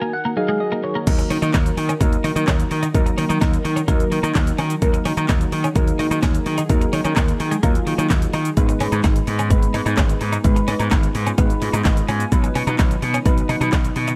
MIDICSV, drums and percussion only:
0, 0, Header, 1, 2, 480
1, 0, Start_track
1, 0, Key_signature, -6, "minor"
1, 0, Tempo, 468750
1, 1096, Time_signature, 4, 2, 24, 8
1, 14499, End_track
2, 0, Start_track
2, 0, Title_t, "Drums"
2, 1096, Note_on_c, 9, 36, 116
2, 1096, Note_on_c, 9, 42, 74
2, 1096, Note_on_c, 9, 49, 102
2, 1096, Note_on_c, 9, 82, 76
2, 1198, Note_off_c, 9, 36, 0
2, 1198, Note_off_c, 9, 42, 0
2, 1198, Note_off_c, 9, 49, 0
2, 1198, Note_off_c, 9, 82, 0
2, 1218, Note_on_c, 9, 42, 56
2, 1218, Note_on_c, 9, 82, 55
2, 1320, Note_off_c, 9, 42, 0
2, 1320, Note_off_c, 9, 82, 0
2, 1336, Note_on_c, 9, 46, 77
2, 1336, Note_on_c, 9, 82, 56
2, 1438, Note_off_c, 9, 46, 0
2, 1438, Note_off_c, 9, 82, 0
2, 1457, Note_on_c, 9, 42, 53
2, 1457, Note_on_c, 9, 82, 75
2, 1560, Note_off_c, 9, 42, 0
2, 1560, Note_off_c, 9, 82, 0
2, 1576, Note_on_c, 9, 38, 94
2, 1577, Note_on_c, 9, 39, 120
2, 1577, Note_on_c, 9, 42, 71
2, 1577, Note_on_c, 9, 82, 68
2, 1580, Note_on_c, 9, 36, 121
2, 1678, Note_off_c, 9, 38, 0
2, 1679, Note_off_c, 9, 39, 0
2, 1680, Note_off_c, 9, 42, 0
2, 1680, Note_off_c, 9, 82, 0
2, 1682, Note_off_c, 9, 36, 0
2, 1700, Note_on_c, 9, 42, 53
2, 1700, Note_on_c, 9, 82, 55
2, 1802, Note_off_c, 9, 42, 0
2, 1802, Note_off_c, 9, 82, 0
2, 1817, Note_on_c, 9, 46, 73
2, 1817, Note_on_c, 9, 82, 52
2, 1920, Note_off_c, 9, 46, 0
2, 1920, Note_off_c, 9, 82, 0
2, 1938, Note_on_c, 9, 42, 61
2, 1938, Note_on_c, 9, 82, 81
2, 2040, Note_off_c, 9, 42, 0
2, 2040, Note_off_c, 9, 82, 0
2, 2054, Note_on_c, 9, 36, 125
2, 2056, Note_on_c, 9, 42, 78
2, 2056, Note_on_c, 9, 82, 75
2, 2157, Note_off_c, 9, 36, 0
2, 2158, Note_off_c, 9, 42, 0
2, 2158, Note_off_c, 9, 82, 0
2, 2177, Note_on_c, 9, 42, 51
2, 2177, Note_on_c, 9, 82, 49
2, 2280, Note_off_c, 9, 42, 0
2, 2280, Note_off_c, 9, 82, 0
2, 2297, Note_on_c, 9, 46, 71
2, 2297, Note_on_c, 9, 82, 51
2, 2400, Note_off_c, 9, 46, 0
2, 2400, Note_off_c, 9, 82, 0
2, 2420, Note_on_c, 9, 42, 62
2, 2420, Note_on_c, 9, 82, 85
2, 2522, Note_off_c, 9, 42, 0
2, 2522, Note_off_c, 9, 82, 0
2, 2534, Note_on_c, 9, 38, 98
2, 2535, Note_on_c, 9, 39, 125
2, 2538, Note_on_c, 9, 36, 113
2, 2538, Note_on_c, 9, 42, 76
2, 2538, Note_on_c, 9, 82, 74
2, 2636, Note_off_c, 9, 38, 0
2, 2637, Note_off_c, 9, 39, 0
2, 2640, Note_off_c, 9, 36, 0
2, 2640, Note_off_c, 9, 42, 0
2, 2640, Note_off_c, 9, 82, 0
2, 2659, Note_on_c, 9, 42, 60
2, 2659, Note_on_c, 9, 82, 60
2, 2761, Note_off_c, 9, 42, 0
2, 2761, Note_off_c, 9, 82, 0
2, 2774, Note_on_c, 9, 46, 66
2, 2774, Note_on_c, 9, 82, 47
2, 2877, Note_off_c, 9, 46, 0
2, 2877, Note_off_c, 9, 82, 0
2, 2896, Note_on_c, 9, 42, 62
2, 2896, Note_on_c, 9, 82, 88
2, 2998, Note_off_c, 9, 42, 0
2, 2998, Note_off_c, 9, 82, 0
2, 3016, Note_on_c, 9, 36, 119
2, 3016, Note_on_c, 9, 42, 76
2, 3016, Note_on_c, 9, 82, 76
2, 3118, Note_off_c, 9, 36, 0
2, 3118, Note_off_c, 9, 42, 0
2, 3118, Note_off_c, 9, 82, 0
2, 3138, Note_on_c, 9, 42, 57
2, 3138, Note_on_c, 9, 82, 57
2, 3240, Note_off_c, 9, 42, 0
2, 3240, Note_off_c, 9, 82, 0
2, 3256, Note_on_c, 9, 46, 78
2, 3256, Note_on_c, 9, 82, 60
2, 3358, Note_off_c, 9, 46, 0
2, 3358, Note_off_c, 9, 82, 0
2, 3377, Note_on_c, 9, 42, 54
2, 3377, Note_on_c, 9, 82, 72
2, 3479, Note_off_c, 9, 42, 0
2, 3479, Note_off_c, 9, 82, 0
2, 3495, Note_on_c, 9, 38, 95
2, 3496, Note_on_c, 9, 39, 116
2, 3497, Note_on_c, 9, 42, 70
2, 3497, Note_on_c, 9, 82, 70
2, 3499, Note_on_c, 9, 36, 118
2, 3598, Note_off_c, 9, 38, 0
2, 3598, Note_off_c, 9, 39, 0
2, 3599, Note_off_c, 9, 42, 0
2, 3599, Note_off_c, 9, 82, 0
2, 3601, Note_off_c, 9, 36, 0
2, 3619, Note_on_c, 9, 42, 55
2, 3619, Note_on_c, 9, 82, 55
2, 3722, Note_off_c, 9, 42, 0
2, 3722, Note_off_c, 9, 82, 0
2, 3737, Note_on_c, 9, 46, 72
2, 3737, Note_on_c, 9, 82, 52
2, 3839, Note_off_c, 9, 46, 0
2, 3839, Note_off_c, 9, 82, 0
2, 3857, Note_on_c, 9, 42, 61
2, 3857, Note_on_c, 9, 82, 80
2, 3959, Note_off_c, 9, 42, 0
2, 3959, Note_off_c, 9, 82, 0
2, 3974, Note_on_c, 9, 36, 124
2, 3976, Note_on_c, 9, 42, 77
2, 3976, Note_on_c, 9, 82, 77
2, 4076, Note_off_c, 9, 36, 0
2, 4078, Note_off_c, 9, 42, 0
2, 4078, Note_off_c, 9, 82, 0
2, 4098, Note_on_c, 9, 42, 50
2, 4098, Note_on_c, 9, 82, 53
2, 4200, Note_off_c, 9, 42, 0
2, 4200, Note_off_c, 9, 82, 0
2, 4217, Note_on_c, 9, 46, 73
2, 4217, Note_on_c, 9, 82, 53
2, 4319, Note_off_c, 9, 46, 0
2, 4319, Note_off_c, 9, 82, 0
2, 4339, Note_on_c, 9, 42, 61
2, 4339, Note_on_c, 9, 82, 85
2, 4441, Note_off_c, 9, 42, 0
2, 4441, Note_off_c, 9, 82, 0
2, 4454, Note_on_c, 9, 38, 98
2, 4455, Note_on_c, 9, 39, 117
2, 4457, Note_on_c, 9, 36, 111
2, 4458, Note_on_c, 9, 42, 76
2, 4458, Note_on_c, 9, 82, 79
2, 4556, Note_off_c, 9, 38, 0
2, 4557, Note_off_c, 9, 39, 0
2, 4560, Note_off_c, 9, 36, 0
2, 4560, Note_off_c, 9, 42, 0
2, 4560, Note_off_c, 9, 82, 0
2, 4579, Note_on_c, 9, 42, 62
2, 4579, Note_on_c, 9, 82, 61
2, 4681, Note_off_c, 9, 42, 0
2, 4681, Note_off_c, 9, 82, 0
2, 4694, Note_on_c, 9, 46, 67
2, 4694, Note_on_c, 9, 82, 48
2, 4796, Note_off_c, 9, 46, 0
2, 4796, Note_off_c, 9, 82, 0
2, 4814, Note_on_c, 9, 42, 62
2, 4814, Note_on_c, 9, 82, 86
2, 4916, Note_off_c, 9, 42, 0
2, 4916, Note_off_c, 9, 82, 0
2, 4935, Note_on_c, 9, 36, 119
2, 4935, Note_on_c, 9, 42, 79
2, 4935, Note_on_c, 9, 82, 76
2, 5037, Note_off_c, 9, 42, 0
2, 5037, Note_off_c, 9, 82, 0
2, 5038, Note_off_c, 9, 36, 0
2, 5057, Note_on_c, 9, 42, 58
2, 5057, Note_on_c, 9, 82, 57
2, 5159, Note_off_c, 9, 42, 0
2, 5159, Note_off_c, 9, 82, 0
2, 5175, Note_on_c, 9, 46, 85
2, 5175, Note_on_c, 9, 82, 59
2, 5277, Note_off_c, 9, 46, 0
2, 5277, Note_off_c, 9, 82, 0
2, 5296, Note_on_c, 9, 42, 55
2, 5296, Note_on_c, 9, 82, 75
2, 5398, Note_off_c, 9, 42, 0
2, 5398, Note_off_c, 9, 82, 0
2, 5414, Note_on_c, 9, 38, 91
2, 5415, Note_on_c, 9, 39, 116
2, 5416, Note_on_c, 9, 42, 71
2, 5416, Note_on_c, 9, 82, 70
2, 5419, Note_on_c, 9, 36, 119
2, 5517, Note_off_c, 9, 38, 0
2, 5517, Note_off_c, 9, 39, 0
2, 5518, Note_off_c, 9, 42, 0
2, 5518, Note_off_c, 9, 82, 0
2, 5521, Note_off_c, 9, 36, 0
2, 5539, Note_on_c, 9, 42, 55
2, 5539, Note_on_c, 9, 82, 55
2, 5641, Note_off_c, 9, 42, 0
2, 5641, Note_off_c, 9, 82, 0
2, 5655, Note_on_c, 9, 46, 72
2, 5655, Note_on_c, 9, 82, 52
2, 5758, Note_off_c, 9, 46, 0
2, 5758, Note_off_c, 9, 82, 0
2, 5776, Note_on_c, 9, 42, 57
2, 5776, Note_on_c, 9, 82, 79
2, 5879, Note_off_c, 9, 42, 0
2, 5879, Note_off_c, 9, 82, 0
2, 5894, Note_on_c, 9, 36, 127
2, 5894, Note_on_c, 9, 42, 79
2, 5894, Note_on_c, 9, 82, 75
2, 5996, Note_off_c, 9, 36, 0
2, 5996, Note_off_c, 9, 42, 0
2, 5996, Note_off_c, 9, 82, 0
2, 6016, Note_on_c, 9, 42, 52
2, 6016, Note_on_c, 9, 82, 51
2, 6119, Note_off_c, 9, 42, 0
2, 6119, Note_off_c, 9, 82, 0
2, 6136, Note_on_c, 9, 46, 74
2, 6136, Note_on_c, 9, 82, 52
2, 6239, Note_off_c, 9, 46, 0
2, 6239, Note_off_c, 9, 82, 0
2, 6259, Note_on_c, 9, 42, 62
2, 6259, Note_on_c, 9, 82, 88
2, 6362, Note_off_c, 9, 42, 0
2, 6362, Note_off_c, 9, 82, 0
2, 6373, Note_on_c, 9, 38, 98
2, 6374, Note_on_c, 9, 39, 118
2, 6377, Note_on_c, 9, 36, 109
2, 6377, Note_on_c, 9, 42, 74
2, 6377, Note_on_c, 9, 82, 76
2, 6476, Note_off_c, 9, 38, 0
2, 6476, Note_off_c, 9, 39, 0
2, 6479, Note_off_c, 9, 42, 0
2, 6479, Note_off_c, 9, 82, 0
2, 6480, Note_off_c, 9, 36, 0
2, 6498, Note_on_c, 9, 42, 60
2, 6498, Note_on_c, 9, 82, 64
2, 6600, Note_off_c, 9, 42, 0
2, 6600, Note_off_c, 9, 82, 0
2, 6614, Note_on_c, 9, 46, 67
2, 6614, Note_on_c, 9, 82, 51
2, 6717, Note_off_c, 9, 46, 0
2, 6717, Note_off_c, 9, 82, 0
2, 6735, Note_on_c, 9, 42, 63
2, 6735, Note_on_c, 9, 82, 87
2, 6838, Note_off_c, 9, 42, 0
2, 6838, Note_off_c, 9, 82, 0
2, 6855, Note_on_c, 9, 42, 80
2, 6855, Note_on_c, 9, 82, 76
2, 6856, Note_on_c, 9, 36, 116
2, 6958, Note_off_c, 9, 36, 0
2, 6958, Note_off_c, 9, 42, 0
2, 6958, Note_off_c, 9, 82, 0
2, 6978, Note_on_c, 9, 42, 54
2, 6978, Note_on_c, 9, 82, 57
2, 7081, Note_off_c, 9, 42, 0
2, 7081, Note_off_c, 9, 82, 0
2, 7095, Note_on_c, 9, 46, 82
2, 7095, Note_on_c, 9, 82, 57
2, 7198, Note_off_c, 9, 46, 0
2, 7198, Note_off_c, 9, 82, 0
2, 7215, Note_on_c, 9, 42, 54
2, 7215, Note_on_c, 9, 82, 76
2, 7318, Note_off_c, 9, 42, 0
2, 7318, Note_off_c, 9, 82, 0
2, 7335, Note_on_c, 9, 38, 94
2, 7335, Note_on_c, 9, 39, 119
2, 7336, Note_on_c, 9, 42, 69
2, 7336, Note_on_c, 9, 82, 70
2, 7339, Note_on_c, 9, 36, 118
2, 7437, Note_off_c, 9, 38, 0
2, 7438, Note_off_c, 9, 39, 0
2, 7439, Note_off_c, 9, 42, 0
2, 7439, Note_off_c, 9, 82, 0
2, 7442, Note_off_c, 9, 36, 0
2, 7459, Note_on_c, 9, 42, 55
2, 7459, Note_on_c, 9, 82, 55
2, 7561, Note_off_c, 9, 42, 0
2, 7561, Note_off_c, 9, 82, 0
2, 7577, Note_on_c, 9, 46, 71
2, 7577, Note_on_c, 9, 82, 51
2, 7679, Note_off_c, 9, 46, 0
2, 7679, Note_off_c, 9, 82, 0
2, 7696, Note_on_c, 9, 42, 58
2, 7696, Note_on_c, 9, 82, 83
2, 7799, Note_off_c, 9, 42, 0
2, 7799, Note_off_c, 9, 82, 0
2, 7814, Note_on_c, 9, 36, 124
2, 7816, Note_on_c, 9, 42, 77
2, 7816, Note_on_c, 9, 82, 78
2, 7917, Note_off_c, 9, 36, 0
2, 7918, Note_off_c, 9, 42, 0
2, 7918, Note_off_c, 9, 82, 0
2, 7938, Note_on_c, 9, 42, 50
2, 7938, Note_on_c, 9, 82, 51
2, 8040, Note_off_c, 9, 42, 0
2, 8040, Note_off_c, 9, 82, 0
2, 8057, Note_on_c, 9, 46, 71
2, 8057, Note_on_c, 9, 82, 53
2, 8160, Note_off_c, 9, 46, 0
2, 8160, Note_off_c, 9, 82, 0
2, 8180, Note_on_c, 9, 42, 61
2, 8180, Note_on_c, 9, 82, 87
2, 8282, Note_off_c, 9, 42, 0
2, 8282, Note_off_c, 9, 82, 0
2, 8294, Note_on_c, 9, 38, 99
2, 8295, Note_on_c, 9, 39, 121
2, 8298, Note_on_c, 9, 36, 107
2, 8298, Note_on_c, 9, 42, 77
2, 8298, Note_on_c, 9, 82, 77
2, 8396, Note_off_c, 9, 38, 0
2, 8397, Note_off_c, 9, 39, 0
2, 8400, Note_off_c, 9, 36, 0
2, 8400, Note_off_c, 9, 42, 0
2, 8400, Note_off_c, 9, 82, 0
2, 8418, Note_on_c, 9, 42, 60
2, 8418, Note_on_c, 9, 82, 63
2, 8520, Note_off_c, 9, 42, 0
2, 8520, Note_off_c, 9, 82, 0
2, 8534, Note_on_c, 9, 46, 66
2, 8534, Note_on_c, 9, 82, 50
2, 8636, Note_off_c, 9, 46, 0
2, 8636, Note_off_c, 9, 82, 0
2, 8654, Note_on_c, 9, 42, 59
2, 8654, Note_on_c, 9, 82, 85
2, 8757, Note_off_c, 9, 42, 0
2, 8757, Note_off_c, 9, 82, 0
2, 8775, Note_on_c, 9, 42, 77
2, 8775, Note_on_c, 9, 82, 76
2, 8776, Note_on_c, 9, 36, 111
2, 8877, Note_off_c, 9, 42, 0
2, 8877, Note_off_c, 9, 82, 0
2, 8878, Note_off_c, 9, 36, 0
2, 8897, Note_on_c, 9, 42, 57
2, 8897, Note_on_c, 9, 82, 55
2, 8999, Note_off_c, 9, 42, 0
2, 8999, Note_off_c, 9, 82, 0
2, 9014, Note_on_c, 9, 46, 84
2, 9014, Note_on_c, 9, 82, 60
2, 9117, Note_off_c, 9, 46, 0
2, 9117, Note_off_c, 9, 82, 0
2, 9136, Note_on_c, 9, 42, 54
2, 9136, Note_on_c, 9, 82, 78
2, 9238, Note_off_c, 9, 42, 0
2, 9238, Note_off_c, 9, 82, 0
2, 9253, Note_on_c, 9, 38, 92
2, 9254, Note_on_c, 9, 39, 119
2, 9255, Note_on_c, 9, 42, 71
2, 9255, Note_on_c, 9, 82, 72
2, 9258, Note_on_c, 9, 36, 119
2, 9356, Note_off_c, 9, 38, 0
2, 9356, Note_off_c, 9, 39, 0
2, 9357, Note_off_c, 9, 42, 0
2, 9357, Note_off_c, 9, 82, 0
2, 9361, Note_off_c, 9, 36, 0
2, 9377, Note_on_c, 9, 42, 53
2, 9377, Note_on_c, 9, 82, 57
2, 9480, Note_off_c, 9, 42, 0
2, 9480, Note_off_c, 9, 82, 0
2, 9495, Note_on_c, 9, 46, 71
2, 9495, Note_on_c, 9, 82, 52
2, 9597, Note_off_c, 9, 46, 0
2, 9597, Note_off_c, 9, 82, 0
2, 9615, Note_on_c, 9, 42, 58
2, 9615, Note_on_c, 9, 82, 85
2, 9718, Note_off_c, 9, 42, 0
2, 9718, Note_off_c, 9, 82, 0
2, 9733, Note_on_c, 9, 36, 124
2, 9733, Note_on_c, 9, 42, 78
2, 9733, Note_on_c, 9, 82, 82
2, 9836, Note_off_c, 9, 36, 0
2, 9836, Note_off_c, 9, 42, 0
2, 9836, Note_off_c, 9, 82, 0
2, 9856, Note_on_c, 9, 42, 52
2, 9856, Note_on_c, 9, 82, 53
2, 9959, Note_off_c, 9, 42, 0
2, 9959, Note_off_c, 9, 82, 0
2, 9976, Note_on_c, 9, 46, 72
2, 9976, Note_on_c, 9, 82, 52
2, 10078, Note_off_c, 9, 46, 0
2, 10078, Note_off_c, 9, 82, 0
2, 10098, Note_on_c, 9, 42, 62
2, 10098, Note_on_c, 9, 82, 83
2, 10200, Note_off_c, 9, 42, 0
2, 10200, Note_off_c, 9, 82, 0
2, 10212, Note_on_c, 9, 38, 98
2, 10213, Note_on_c, 9, 39, 119
2, 10216, Note_on_c, 9, 42, 75
2, 10216, Note_on_c, 9, 82, 75
2, 10217, Note_on_c, 9, 36, 108
2, 10314, Note_off_c, 9, 38, 0
2, 10315, Note_off_c, 9, 39, 0
2, 10318, Note_off_c, 9, 42, 0
2, 10318, Note_off_c, 9, 82, 0
2, 10319, Note_off_c, 9, 36, 0
2, 10336, Note_on_c, 9, 42, 60
2, 10336, Note_on_c, 9, 82, 63
2, 10439, Note_off_c, 9, 42, 0
2, 10439, Note_off_c, 9, 82, 0
2, 10453, Note_on_c, 9, 46, 70
2, 10453, Note_on_c, 9, 82, 49
2, 10555, Note_off_c, 9, 46, 0
2, 10555, Note_off_c, 9, 82, 0
2, 10574, Note_on_c, 9, 42, 64
2, 10574, Note_on_c, 9, 82, 83
2, 10676, Note_off_c, 9, 42, 0
2, 10676, Note_off_c, 9, 82, 0
2, 10694, Note_on_c, 9, 42, 79
2, 10694, Note_on_c, 9, 82, 74
2, 10695, Note_on_c, 9, 36, 115
2, 10796, Note_off_c, 9, 42, 0
2, 10796, Note_off_c, 9, 82, 0
2, 10797, Note_off_c, 9, 36, 0
2, 10817, Note_on_c, 9, 42, 55
2, 10817, Note_on_c, 9, 82, 56
2, 10919, Note_off_c, 9, 42, 0
2, 10919, Note_off_c, 9, 82, 0
2, 10934, Note_on_c, 9, 46, 80
2, 10934, Note_on_c, 9, 82, 59
2, 11036, Note_off_c, 9, 46, 0
2, 11036, Note_off_c, 9, 82, 0
2, 11055, Note_on_c, 9, 42, 55
2, 11055, Note_on_c, 9, 82, 74
2, 11157, Note_off_c, 9, 42, 0
2, 11157, Note_off_c, 9, 82, 0
2, 11174, Note_on_c, 9, 38, 97
2, 11174, Note_on_c, 9, 39, 119
2, 11175, Note_on_c, 9, 42, 67
2, 11175, Note_on_c, 9, 82, 69
2, 11178, Note_on_c, 9, 36, 117
2, 11276, Note_off_c, 9, 38, 0
2, 11277, Note_off_c, 9, 39, 0
2, 11278, Note_off_c, 9, 42, 0
2, 11278, Note_off_c, 9, 82, 0
2, 11280, Note_off_c, 9, 36, 0
2, 11298, Note_on_c, 9, 42, 54
2, 11298, Note_on_c, 9, 82, 54
2, 11401, Note_off_c, 9, 42, 0
2, 11401, Note_off_c, 9, 82, 0
2, 11415, Note_on_c, 9, 46, 72
2, 11415, Note_on_c, 9, 82, 52
2, 11518, Note_off_c, 9, 46, 0
2, 11518, Note_off_c, 9, 82, 0
2, 11536, Note_on_c, 9, 42, 59
2, 11536, Note_on_c, 9, 82, 82
2, 11638, Note_off_c, 9, 42, 0
2, 11638, Note_off_c, 9, 82, 0
2, 11653, Note_on_c, 9, 36, 125
2, 11654, Note_on_c, 9, 42, 77
2, 11654, Note_on_c, 9, 82, 78
2, 11756, Note_off_c, 9, 36, 0
2, 11756, Note_off_c, 9, 42, 0
2, 11756, Note_off_c, 9, 82, 0
2, 11777, Note_on_c, 9, 42, 52
2, 11777, Note_on_c, 9, 82, 51
2, 11880, Note_off_c, 9, 42, 0
2, 11880, Note_off_c, 9, 82, 0
2, 11895, Note_on_c, 9, 46, 74
2, 11895, Note_on_c, 9, 82, 50
2, 11998, Note_off_c, 9, 46, 0
2, 11998, Note_off_c, 9, 82, 0
2, 12018, Note_on_c, 9, 42, 63
2, 12018, Note_on_c, 9, 82, 87
2, 12121, Note_off_c, 9, 42, 0
2, 12121, Note_off_c, 9, 82, 0
2, 12133, Note_on_c, 9, 38, 103
2, 12134, Note_on_c, 9, 39, 120
2, 12137, Note_on_c, 9, 36, 108
2, 12137, Note_on_c, 9, 42, 75
2, 12137, Note_on_c, 9, 82, 76
2, 12236, Note_off_c, 9, 38, 0
2, 12236, Note_off_c, 9, 39, 0
2, 12239, Note_off_c, 9, 36, 0
2, 12239, Note_off_c, 9, 42, 0
2, 12239, Note_off_c, 9, 82, 0
2, 12258, Note_on_c, 9, 42, 61
2, 12258, Note_on_c, 9, 82, 61
2, 12360, Note_off_c, 9, 42, 0
2, 12360, Note_off_c, 9, 82, 0
2, 12374, Note_on_c, 9, 46, 66
2, 12374, Note_on_c, 9, 82, 49
2, 12477, Note_off_c, 9, 46, 0
2, 12477, Note_off_c, 9, 82, 0
2, 12494, Note_on_c, 9, 42, 62
2, 12494, Note_on_c, 9, 82, 85
2, 12597, Note_off_c, 9, 42, 0
2, 12597, Note_off_c, 9, 82, 0
2, 12615, Note_on_c, 9, 36, 113
2, 12615, Note_on_c, 9, 42, 77
2, 12615, Note_on_c, 9, 82, 77
2, 12717, Note_off_c, 9, 36, 0
2, 12717, Note_off_c, 9, 42, 0
2, 12717, Note_off_c, 9, 82, 0
2, 12737, Note_on_c, 9, 42, 56
2, 12737, Note_on_c, 9, 82, 58
2, 12839, Note_off_c, 9, 42, 0
2, 12839, Note_off_c, 9, 82, 0
2, 12855, Note_on_c, 9, 46, 83
2, 12855, Note_on_c, 9, 82, 61
2, 12957, Note_off_c, 9, 46, 0
2, 12957, Note_off_c, 9, 82, 0
2, 12977, Note_on_c, 9, 42, 54
2, 12977, Note_on_c, 9, 82, 73
2, 13079, Note_off_c, 9, 42, 0
2, 13079, Note_off_c, 9, 82, 0
2, 13095, Note_on_c, 9, 38, 91
2, 13095, Note_on_c, 9, 39, 122
2, 13096, Note_on_c, 9, 42, 73
2, 13096, Note_on_c, 9, 82, 73
2, 13099, Note_on_c, 9, 36, 117
2, 13197, Note_off_c, 9, 38, 0
2, 13198, Note_off_c, 9, 39, 0
2, 13198, Note_off_c, 9, 42, 0
2, 13198, Note_off_c, 9, 82, 0
2, 13201, Note_off_c, 9, 36, 0
2, 13219, Note_on_c, 9, 42, 54
2, 13219, Note_on_c, 9, 82, 55
2, 13322, Note_off_c, 9, 42, 0
2, 13322, Note_off_c, 9, 82, 0
2, 13336, Note_on_c, 9, 46, 70
2, 13336, Note_on_c, 9, 82, 54
2, 13439, Note_off_c, 9, 46, 0
2, 13439, Note_off_c, 9, 82, 0
2, 13456, Note_on_c, 9, 42, 59
2, 13456, Note_on_c, 9, 82, 84
2, 13559, Note_off_c, 9, 42, 0
2, 13559, Note_off_c, 9, 82, 0
2, 13574, Note_on_c, 9, 36, 123
2, 13575, Note_on_c, 9, 42, 76
2, 13575, Note_on_c, 9, 82, 83
2, 13676, Note_off_c, 9, 36, 0
2, 13677, Note_off_c, 9, 42, 0
2, 13677, Note_off_c, 9, 82, 0
2, 13697, Note_on_c, 9, 42, 52
2, 13697, Note_on_c, 9, 82, 51
2, 13799, Note_off_c, 9, 42, 0
2, 13799, Note_off_c, 9, 82, 0
2, 13816, Note_on_c, 9, 46, 72
2, 13816, Note_on_c, 9, 82, 50
2, 13919, Note_off_c, 9, 46, 0
2, 13919, Note_off_c, 9, 82, 0
2, 13939, Note_on_c, 9, 42, 62
2, 13939, Note_on_c, 9, 82, 84
2, 14042, Note_off_c, 9, 42, 0
2, 14042, Note_off_c, 9, 82, 0
2, 14054, Note_on_c, 9, 38, 97
2, 14055, Note_on_c, 9, 39, 121
2, 14057, Note_on_c, 9, 36, 108
2, 14058, Note_on_c, 9, 42, 78
2, 14058, Note_on_c, 9, 82, 76
2, 14156, Note_off_c, 9, 38, 0
2, 14157, Note_off_c, 9, 39, 0
2, 14160, Note_off_c, 9, 36, 0
2, 14160, Note_off_c, 9, 42, 0
2, 14160, Note_off_c, 9, 82, 0
2, 14178, Note_on_c, 9, 42, 61
2, 14178, Note_on_c, 9, 82, 60
2, 14280, Note_off_c, 9, 42, 0
2, 14280, Note_off_c, 9, 82, 0
2, 14293, Note_on_c, 9, 46, 68
2, 14293, Note_on_c, 9, 82, 50
2, 14395, Note_off_c, 9, 46, 0
2, 14395, Note_off_c, 9, 82, 0
2, 14413, Note_on_c, 9, 42, 64
2, 14413, Note_on_c, 9, 82, 87
2, 14499, Note_off_c, 9, 42, 0
2, 14499, Note_off_c, 9, 82, 0
2, 14499, End_track
0, 0, End_of_file